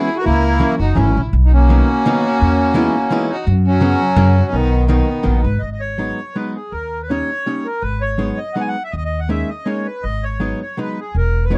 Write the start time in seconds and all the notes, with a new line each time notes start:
Already playing: E4 G#4
0.17 F#4
0.21 A#3 E4 A#4
0.26 C#2 A#4
0.59 E3 F#3 A#3 C#4 E4
0.79 F#1 D#4 F#4
0.95 G#1 E3 F#3 A#3 C#4 E4
0.99 E4
1.17 A#1
1.33 B1
1.45 D#4 F#4
1.53 A#3 C#4 F#4
1.69 D#3 F#3 A#3 B3 D#4
2.06 D#3 F#3 A#3 B3 D#4
2.41 E2
2.74 E3 G#3 B3 D#4 E4
3.11 E3 G#3 B3 D#4 E4
3.30 D#4 F#4
3.47 F#2
3.67 F#3 C#4 F#4
3.80 C#3 F#3 B3 C#4 F#4
4.16 F#2 C#3 F#3 A#3 C#4 F#4
4.51 B1 D#3 B3 D#4
4.88 D#3 F#3 A#3 B3 D#4
5.23 A#1 D#3 F#3 A#3 B3 D#4
5.43 G#1 B4
5.59 G#1 D#5
5.72 D#5
5.80 C#5
5.98 F#3 G#3 B3 D#4
6.35 F#3 G#3 B3 D#4 B4
6.54 G#4
6.72 D#2 A#4
7.02 B4
7.09 G3 A#3 C#4 D#4 C#5
7.46 G3 A#3 C#4 D#4
7.65 A#4
7.81 G#1 B4
8.01 C#5
8.18 F#3 G#3 B3 D#4
8.37 D#5
8.53 F#3 G#3 B3 D#4 F#5
8.60 G#5
8.68 F#5
8.84 E5
8.92 D#2 D#5
8.97 D#5
9.05 D#5
9.20 F#5
9.29 G#3 A#3 C#4 D#4 E5
9.49 D#5
9.66 G#3 A#3 C#4 D#4 C#5
9.86 B4
10.03 G#1 D#5
10.23 C#5
10.40 F#3 G#3 B3 D#4
10.61 C#5
10.77 F#3 G#3 B3 D#4 B4
10.99 G#4
11.15 E1 A#4
11.45 B4
11.50 E3 G#3 B3 D#4 C#5